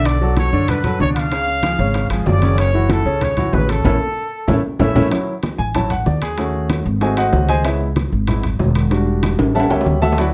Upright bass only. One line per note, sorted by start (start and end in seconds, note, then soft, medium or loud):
0.00 0.47 B1 medium
0.53 0.97 F#2 medium
1.00 1.74 C#2 medium
1.79 2.08 G#1 loud
2.10 2.25 G#1 medium
2.26 3.00 F#1 medium
3.05 3.50 C#2 medium
3.53 3.83 A1 loud
3.85 3.97 A1 loud
4.48 4.60 A1 loud
4.80 4.91 A1 medium
4.96 5.07 A1 loud
5.59 6.03 A1 loud
6.06 6.80 D#2 medium
6.86 7.30 G#1 medium
7.33 8.06 C#2 loud
8.12 8.56 G#1 medium
8.60 9.33 E1 medium
9.39 9.68 A1 medium
9.71 9.85 C#2 medium
9.86 10.34 D2 medium